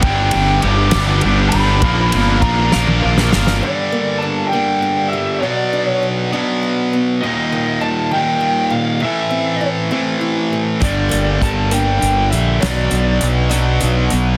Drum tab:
RD |x-x-x-x-x-x-|x-x-x-------|------------|------------|
HH |------------|------------|------------|------------|
SD |------o-----|------o--ooo|------------|------------|
T1 |------------|-------o----|------------|------------|
BD |o-----------|o---o-------|------------|------------|

RD |------------|------------|------------|------------|
HH |------------|------------|x-x-x-x-x-x-|x-x-x-x-x-x-|
SD |------------|------------|------------|o-----------|
T1 |------------|------------|------------|------------|
BD |------------|------------|o---o-------|------------|